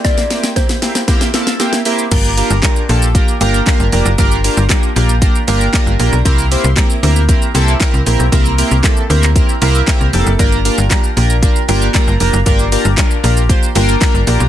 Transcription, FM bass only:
\new Staff \with { instrumentName = "FM bass" } { \clef bass \time 4/4 \key g \dorian \tempo 4 = 116 r1 | g,,8. g,,16 r8 bes,,8. r16 g,,8 r16 g,,16 f,,16 fis,,16 | g,,8. g,,16 r8 bes,,8. r16 g,,8 r16 g,,16 bes,,16 b,,16 | c,8. c,16 r8 d,8. r16 c,8 r16 c,16 bes,,16 b,,16 |
c,8. c,16 r8 d,8. r16 c,8 r16 c,16 f,,16 fis,,16 | g,,8. g,,16 r8 bes,,8. r16 g,,8 r16 g,,16 f,,16 fis,,16 | g,,8. g,,16 r8 bes,,8. r16 g,,8 r16 g,,16 bes,,16 b,,16 | }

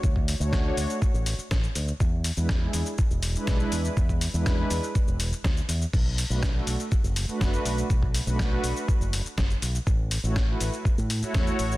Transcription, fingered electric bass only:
\new Staff \with { instrumentName = "Fingered electric bass" } { \clef bass \time 4/4 \key b \dorian \tempo 4 = 122 d,8 r16 d,8 r16 d,16 r8 a,,8 r16 a,,16 r16 d,16 r16 | e,8 r16 e,8 r16 e,16 r8 e,,8 r16 b,,16 r16 e,16 r16 | e,8 r16 e,8 r16 e,16 r8 e,,8 r16 d,16 r16 e,16 r16 | b,,8 r16 b,,8 r16 b,,16 r8 fis,,8 r16 fis,,16 r16 b,,16 r16 |
b,,8 r16 b,,8 r16 b,,16 r8 fis,,8 r16 fis,,16 r16 b,,16 r16 | a,,8 r16 a,,8 r16 a,,16 r8 a,8 r16 e,16 r16 a,,16 r16 | }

